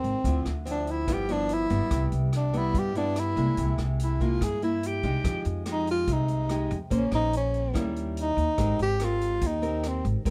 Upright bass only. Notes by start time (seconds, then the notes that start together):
0.04 G#1
0.25 D2
0.46 D2
1.08 G1
1.70 G1
1.91 C2
2.12 C2
2.74 G2
3.36 C2
3.58 C2
3.78 C2
4.41 G2
5.04 C2
5.25 F2
5.45 F2
6.08 C2
6.71 F2
6.91 A#1
7.12 A#1
7.75 D#2
8.37 D#2
8.58 G#1
8.80 G#1
9.42 D#2
10.05 G#1
10.26 G#1